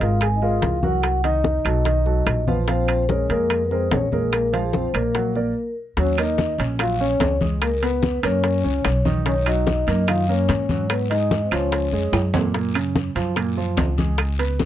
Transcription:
0.00 upright bass G#1, grand piano G#3 G#4 A#4, trombone F4, vibraphone F5, high conga, high timbale
0.21 trombone G#4, vibraphone G#5, high bongo, high conga, high timbale, claves
0.35 trombone D#4, vibraphone D#5
0.42 grand piano G#3 G#4 A#4, trombone F4, vibraphone F5, high bongo, high conga
0.62 upright bass C2, high bongo, low bongo, high conga, high timbale
0.83 grand piano F#3 F#4 A#4, trombone F#4, vibraphone F#5, high bongo, high conga
1.03 high bongo, high conga, high timbale, claves
1.24 grand piano D#3 D#4 D#5, trombone D#4, vibraphone D#5, high bongo, high conga, high timbale
1.44 high bongo, high conga
1.65 upright bass B1, grand piano F#3 F#4 A4, high timbale, claves
1.85 grand piano D#3 D#4 D#5, high bongo, high conga, high timbale
2.06 grand piano F#3 F#4 A4, high bongo, high conga
2.26 upright bass A#1, high bongo, low bongo, high conga, high timbale, claves
2.47 grand piano F3 F4 F5, trombone B3, vibraphone B4, high conga
2.68 grand piano F3 F4 F5, trombone C4, vibraphone C5, high bongo, high conga, high timbale
2.88 high bongo, high conga, high timbale, claves
3.09 grand piano G#3 G#4 A#4, trombone C#4, vibraphone C#5, high bongo, high conga
3.29 upright bass F2, grand piano G#3 G#4 A#4, trombone A#3, vibraphone A#4, high conga, high timbale
3.50 high bongo, high conga, high timbale, claves
3.66 trombone B3, vibraphone B4
3.71 grand piano G#3 G#4 A#4, trombone C4, vibraphone C5, high bongo, high conga
3.91 upright bass A#1, trombone C#4, vibraphone C#5, high bongo, low bongo, high conga, high timbale, low timbale
4.12 grand piano G#3 G#4 A#4, trombone A#3, vibraphone A#4, high bongo, high conga
4.33 trombone A#3, vibraphone A#4, high bongo, high conga, high timbale, claves
4.53 grand piano F3 F4 F5, trombone G#3, vibraphone G#4, high bongo, high conga, high timbale
4.73 trombone C4, vibraphone C5, high bongo, high conga
4.94 upright bass A#1, grand piano A#3 A#4 D5, trombone A#3, vibraphone A#4, high timbale, claves
5.15 grand piano F#3 F#4 F#5, high bongo, high conga, high timbale
5.35 grand piano A#3 A#4 D5, high bongo, high conga
5.97 upright bass D#2, grand piano F#3 F#4, trombone C#4, vibraphone C#5, high bongo, high conga, high timbale, long guiro
6.18 grand piano A#3 A#4, trombone D#4, high bongo, high conga, high timbale, claves
6.38 high bongo, high conga, short guiro
6.58 upright bass A#1, grand piano C#4 C#5, high conga, high timbale, short guiro
6.79 grand piano F#3 F#4, trombone F4, vibraphone F5, high bongo, high conga, high timbale, long guiro, claves
7.00 grand piano C#4 C#5, trombone C#4, vibraphone C#5, high bongo, high conga
7.20 upright bass C#2, high bongo, low bongo, high conga, high timbale, low timbale, short guiro
7.41 grand piano G#3 G#4, high bongo, high conga, short guiro
7.61 trombone A#3, vibraphone A#4, high bongo, high conga, high timbale, long guiro, claves
7.82 grand piano B3 B4, trombone B3, high bongo, high conga, high timbale
8.03 high bongo, high conga, short guiro
8.23 upright bass F#2, grand piano A#3 A#4, trombone C#4, vibraphone C#5, high timbale, short guiro, claves
8.44 high bongo, high conga, high timbale, long guiro
8.64 upright bass C#2, grand piano C#4 C#5, high bongo, high conga
8.85 upright bass B1, high bongo, low bongo, high conga, high timbale, short guiro, claves
9.05 grand piano D#3 D#4, high conga, short guiro
9.26 grand piano D#3 D#4, trombone C#4, vibraphone C#5, high bongo, high conga, high timbale, long guiro
9.46 grand piano F#3 F#4, trombone D#4, high bongo, high conga, high timbale, claves
9.67 high bongo, high conga, short guiro
9.87 upright bass F#2, grand piano A#3 A#4, high conga, high timbale, short guiro
10.07 grand piano D#3 D#4, trombone F4, vibraphone F5, high bongo, high conga, high timbale, long guiro, claves
10.29 grand piano A#3 A#4, trombone C#4, vibraphone C#5, high bongo, high conga
10.48 upright bass G#2, high bongo, low bongo, high conga, high timbale, short guiro
10.69 grand piano F#3 F#4, high bongo, high conga, short guiro
10.90 trombone B3, vibraphone B4, high bongo, high conga, high timbale, long guiro, claves
11.10 grand piano G#3 G#4, trombone D#4, vibraphone D#5, high bongo, high conga, high timbale
11.31 high bongo, high conga, short guiro
11.44 trombone C4, vibraphone C5
11.51 upright bass C#2, grand piano F3 F4, trombone C#4, vibraphone C#5, high timbale, short guiro, claves
11.72 high bongo, high conga, high timbale, long guiro
11.92 upright bass F2, grand piano G#3 G#4, high bongo, high conga
12.12 upright bass F#2, high bongo, low bongo, high conga, high timbale, short guiro, claves
12.34 grand piano A#2 A#3, high conga, low timbale, short guiro
12.54 grand piano A#2 A#3, high bongo, high conga, high timbale, long guiro
12.74 grand piano C#3 C#4, high bongo, high conga, high timbale, claves
12.96 high bongo, high conga, short guiro
13.15 upright bass F#2, grand piano F3 F4, high conga, high timbale, short guiro
13.36 grand piano A#2 A#3, high bongo, high conga, high timbale, long guiro, claves
13.57 grand piano F3 F4, high bongo, high conga
13.77 upright bass C#2, high bongo, low bongo, high conga, high timbale, low timbale, short guiro
13.98 grand piano G#3 G#4, high bongo, high conga, short guiro
14.18 high bongo, high conga, high timbale, long guiro, claves
14.39 grand piano B3 B4, high bongo, high conga, high timbale
14.59 high bongo, high conga, short guiro

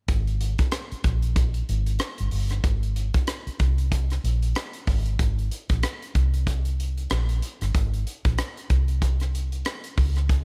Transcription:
0.08 fingered electric bass G#1, kick, closed hi-hat
0.27 closed hi-hat
0.41 closed hi-hat
0.58 muted fingered electric bass stroke, kick, closed hi-hat
0.72 cross-stick, closed hi-hat
0.92 muted fingered electric bass stroke, closed hi-hat
1.04 fingered electric bass A#1, kick, closed hi-hat
1.22 closed hi-hat
1.36 kick, closed hi-hat
1.54 closed hi-hat
1.69 fingered electric bass G#1, closed hi-hat
1.86 closed hi-hat
1.99 cross-stick, closed hi-hat
2.18 fingered electric bass G1, closed hi-hat
2.31 fingered electric bass G1, open hi-hat
2.50 cross-stick, closed hi-hat
2.64 fingered electric bass G#1, kick, closed hi-hat
2.83 closed hi-hat
2.96 closed hi-hat
3.14 kick, closed hi-hat
3.27 cross-stick, closed hi-hat
3.47 muted fingered electric bass stroke, closed hi-hat
3.59 fingered electric bass C2, kick, closed hi-hat
3.78 closed hi-hat
3.92 kick, closed hi-hat
4.10 cross-stick, closed hi-hat
4.24 fingered electric bass A#1, closed hi-hat
4.42 closed hi-hat
4.55 cross-stick, closed hi-hat
4.73 closed hi-hat
4.87 fingered electric bass G#1, kick, open hi-hat
5.06 closed hi-hat
5.19 fingered electric bass G#1, kick, closed hi-hat
5.39 closed hi-hat
5.51 closed hi-hat
5.69 fingered electric bass A#1, kick, closed hi-hat
5.83 cross-stick, closed hi-hat
6.02 closed hi-hat
6.15 fingered electric bass C2, kick, closed hi-hat
6.34 closed hi-hat
6.47 kick, closed hi-hat
6.65 closed hi-hat
6.80 closed hi-hat
6.98 closed hi-hat
7.10 fingered electric bass A#1, cross-stick, closed hi-hat
7.29 closed hi-hat
7.42 closed hi-hat
7.61 fingered electric bass G1, cross-stick, closed hi-hat
7.75 fingered electric bass G#1, kick, closed hi-hat
7.94 closed hi-hat
8.07 closed hi-hat
8.25 fingered electric bass A#1, kick, closed hi-hat
8.38 cross-stick, closed hi-hat
8.57 closed hi-hat
8.70 fingered electric bass C2, kick, closed hi-hat
8.88 closed hi-hat
9.02 kick, closed hi-hat
9.20 cross-stick, closed hi-hat
9.35 closed hi-hat
9.52 closed hi-hat
9.65 cross-stick, closed hi-hat
9.84 closed hi-hat
9.97 fingered electric bass C#2, kick, open hi-hat
10.16 cross-stick, closed hi-hat
10.29 kick, closed hi-hat

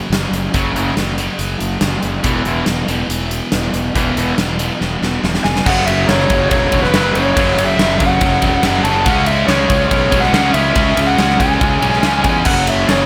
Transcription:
Already playing: distorted electric guitar F#2 C#3 F#3
0.10 fingered electric bass F#1, snare, closed hi-hat
0.31 fingered electric bass F#1, closed hi-hat
0.54 fingered electric bass F#1, overdriven electric guitar F#2 C#3 F#3, kick, closed hi-hat
0.74 fingered electric bass F#1, overdriven electric guitar F#2 C#3 F#3, closed hi-hat
0.97 fingered electric bass F#1, snare, closed hi-hat
1.18 distorted electric guitar F#2 C#3 F#3, closed hi-hat
1.39 fingered electric bass F#1, closed hi-hat
1.60 fingered electric bass F#1, closed hi-hat
1.81 fingered electric bass F#1, snare, closed hi-hat
2.03 fingered electric bass F#1, closed hi-hat
2.23 fingered electric bass E1, overdriven electric guitar E2 B2 E3, kick, closed hi-hat
2.45 fingered electric bass E1, overdriven electric guitar E2 B2 E3, closed hi-hat
2.66 fingered electric bass E1, snare, closed hi-hat
2.88 fingered electric bass E1, distorted electric guitar E2 B2 E3, closed hi-hat
3.09 fingered electric bass E1, closed hi-hat
3.31 closed hi-hat
3.52 fingered electric bass E1, snare, closed hi-hat
3.74 fingered electric bass E1, closed hi-hat
3.96 fingered electric bass E1, overdriven electric guitar E2 B2 E3, kick, closed hi-hat
4.16 fingered electric bass E1, overdriven electric guitar E2 B2 E3, closed hi-hat
4.38 fingered electric bass E1, snare, closed hi-hat
4.59 distorted electric guitar E2 B2 E3, closed hi-hat
4.81 fingered electric bass E1, snare
5.02 fingered electric bass E1, snare
5.24 fingered electric bass E1, snare
5.34 snare
5.44 fingered electric bass F1, lead electric guitar G#5, snare
5.55 snare
5.66 fingered electric bass F#1, overdriven electric guitar F#2 C#3 F#3, lead electric guitar F#5, kick, crash
5.86 lead electric guitar E5, ride
6.07 fingered electric bass F#1, overdriven electric guitar F#2 C#3 F#3, lead electric guitar C#5, snare, ride
6.20 snare
6.30 fingered electric bass F#1, overdriven electric guitar F#2 C#3 F#3, kick, ride
6.50 fingered electric bass E1, overdriven electric guitar F#2 C#3 F#3, lead electric guitar C#5, kick, ride
6.72 fingered electric bass E1, distorted electric guitar F#2 C#3 F#3, kick, ride
6.82 lead electric guitar B4, snare
6.94 fingered electric bass F#1, overdriven electric guitar F#2 C#3 F#3, snare, ride
7.14 fingered electric bass F#1, overdriven electric guitar F#2 C#3 F#3, lead electric guitar C#5, ride
7.37 fingered electric bass F#1, overdriven electric guitar F#2 C#3 F#3, kick, ride
7.57 fingered electric bass F#1, ride
7.66 lead electric guitar E5
7.78 fingered electric bass F#1, overdriven electric guitar F#2 C#3 F#3, snare, ride
7.98 fingered electric bass F#1, overdriven electric guitar F#2 C#3 F#3, lead electric guitar F#5, kick, ride
8.21 fingered electric bass F#1, overdriven electric guitar F#2 C#3 F#3, kick, ride
8.42 fingered electric bass E1, distorted electric guitar F#2 C#3 F#3, kick, ride
8.63 fingered electric bass F#1, overdriven electric guitar F#2 C#3 F#3, snare, ride
8.83 fingered electric bass F#1, overdriven electric guitar F#2 C#3 F#3, lead electric guitar A5, ride
9.05 fingered electric bass C#2, overdriven electric guitar C#3 G#3 C#4, lead electric guitar F#5, kick, ride
9.26 lead electric guitar E5, ride
9.47 fingered electric bass C#2, overdriven electric guitar C#3 G#3, lead electric guitar C#5, snare, ride
9.51 overdriven electric guitar C#4
9.69 fingered electric bass C#2, overdriven electric guitar C#3 G#3 C#4, kick, ride
9.89 fingered electric bass B1, overdriven electric guitar C#3 G#3 C#4, lead electric guitar C#5, kick, ride
10.11 fingered electric bass B1, distorted electric guitar C#3 G#3 C#4, kick, ride
10.20 lead electric guitar F#5, snare
10.33 fingered electric bass C#2, overdriven electric guitar C#3 G#3 C#4, snare, ride
10.53 fingered electric bass C#2, overdriven electric guitar C#3 G#3 C#4, lead electric guitar E5, ride
10.75 fingered electric bass C#2, overdriven electric guitar C#3 G#3 C#4, kick, ride
10.97 fingered electric bass C#2, ride
11.07 lead electric guitar F#5
11.17 fingered electric bass C#2, overdriven electric guitar C#3 G#3 C#4, snare, ride
11.30 snare
11.39 fingered electric bass C#2, overdriven electric guitar C#3 G#3 C#4, lead electric guitar G#5, kick, ride
11.60 fingered electric bass C#2, overdriven electric guitar C#3 G#3 C#4, kick, ride
11.82 fingered electric bass B1, distorted electric guitar C#3 G#3 C#4, ride
11.93 snare
12.03 fingered electric bass C#2, overdriven electric guitar C#3 G#3 C#4, snare, ride
12.23 fingered electric bass E2, overdriven electric guitar C#3 G#3 C#4, lead electric guitar G#5, kick, ride
12.45 fingered electric bass F#1, overdriven electric guitar F#2 C#3 F#3, tonewheel organ F#3 C#4 G#4, lead electric guitar F#5, kick, crash
12.67 lead electric guitar E5, ride
12.88 fingered electric bass F#1, overdriven electric guitar F#2 C#3 F#3, lead electric guitar C#5, snare, ride

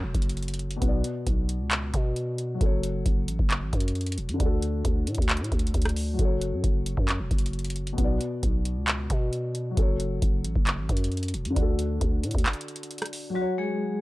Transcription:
Already playing: grand piano F#3 F#4 A4 C#5
0.03 808-style bass E1
0.14 808-style bass F#1, kick, closed hi-hat
0.22 closed hi-hat
0.29 closed hi-hat
0.37 closed hi-hat
0.43 closed hi-hat
0.48 closed hi-hat
0.54 closed hi-hat
0.59 closed hi-hat
0.71 closed hi-hat
0.77 grand piano B2 B3
0.82 808-style bass B1, grand piano F#4, kick, closed hi-hat
0.88 grand piano D5
1.04 closed hi-hat
1.27 808-style bass B1, kick, closed hi-hat
1.49 closed hi-hat
1.60 808-style bass C#2
1.71 clap, closed hi-hat
1.94 808-style bass B2, kick, closed hi-hat
2.16 closed hi-hat
2.38 closed hi-hat
2.54 grand piano F#3 F#4
2.61 808-style bass F#1, grand piano A4, kick, closed hi-hat
2.66 grand piano C#5
2.83 closed hi-hat
3.06 808-style bass F#1, kick, closed hi-hat
3.28 808-style bass A1, closed hi-hat
3.39 808-style bass F#1, kick
3.51 clap, closed hi-hat
3.62 808-style bass G#1
3.73 808-style bass F#2, kick, closed hi-hat
3.80 closed hi-hat
3.88 closed hi-hat
3.95 closed hi-hat
4.01 closed hi-hat
4.06 closed hi-hat
4.12 closed hi-hat
4.18 808-style bass E1, closed hi-hat
4.29 808-style bass F#2, closed hi-hat
4.34 grand piano D3 D4
4.40 808-style bass D2, grand piano F#4, kick, closed hi-hat
4.45 grand piano A4
4.62 closed hi-hat
4.85 808-style bass D2, kick, closed hi-hat
5.07 808-style bass A2, closed hi-hat
5.15 808-style bass D2, kick, closed hi-hat
5.22 closed hi-hat
5.29 clap, closed hi-hat
5.37 808-style bass A2, closed hi-hat
5.44 closed hi-hat
5.52 808-style bass D2, kick, closed hi-hat
5.59 closed hi-hat
5.67 closed hi-hat
5.74 808-style bass D2, kick, closed hi-hat
5.82 cross-stick, closed hi-hat
5.85 closed hi-hat
5.89 closed hi-hat
5.96 open hi-hat
6.13 grand piano F#3 F#4
6.19 808-style bass F#1, grand piano A4, kick, closed hi-hat
6.25 grand piano C#5
6.41 closed hi-hat
6.53 808-style bass F#2
6.64 808-style bass F#1, kick, closed hi-hat
6.86 closed hi-hat
6.97 808-style bass F#2, kick
7.09 clap, closed hi-hat
7.20 808-style bass E1
7.31 808-style bass F#1, kick, closed hi-hat
7.38 closed hi-hat
7.46 closed hi-hat
7.53 closed hi-hat
7.59 closed hi-hat
7.64 closed hi-hat
7.70 closed hi-hat
7.76 closed hi-hat
7.87 closed hi-hat
7.93 grand piano B2 B3
7.98 808-style bass B1, grand piano F#4, kick, closed hi-hat
8.04 grand piano D5
8.21 closed hi-hat
8.43 808-style bass B1, kick, closed hi-hat
8.65 closed hi-hat
8.76 808-style bass C#2
8.88 clap, closed hi-hat
9.10 808-style bass B2, kick, closed hi-hat
9.33 closed hi-hat
9.55 closed hi-hat
9.71 grand piano F#3 F#4
9.77 808-style bass F#1, grand piano A4, kick, closed hi-hat
9.82 grand piano C#5
10.00 closed hi-hat
10.22 808-style bass F#1, kick, closed hi-hat
10.44 808-style bass A1, closed hi-hat
10.56 808-style bass F#1, kick
10.67 clap, closed hi-hat
10.78 808-style bass G#1
10.89 808-style bass F#2, kick, closed hi-hat
10.97 closed hi-hat
11.04 closed hi-hat
11.12 closed hi-hat
11.17 closed hi-hat
11.23 closed hi-hat
11.28 closed hi-hat
11.34 808-style bass E1, closed hi-hat
11.45 808-style bass F#2, closed hi-hat
11.50 grand piano D3 D4
11.56 808-style bass D2, grand piano F#4, kick, closed hi-hat
11.62 grand piano A4
11.79 closed hi-hat
12.01 808-style bass D2, kick, closed hi-hat
12.24 808-style bass A2, closed hi-hat
12.31 808-style bass D2, kick, closed hi-hat
12.38 closed hi-hat
12.46 clap, closed hi-hat
12.53 closed hi-hat
12.61 closed hi-hat
12.68 closed hi-hat
12.76 closed hi-hat
12.83 closed hi-hat
12.91 closed hi-hat
12.98 cross-stick, closed hi-hat
13.02 closed hi-hat
13.06 closed hi-hat
13.13 open hi-hat
13.30 grand piano F#3 F#4
13.35 vibraphone F#3 F#4
13.41 grand piano C#5
13.58 vibraphone G#3 G#4

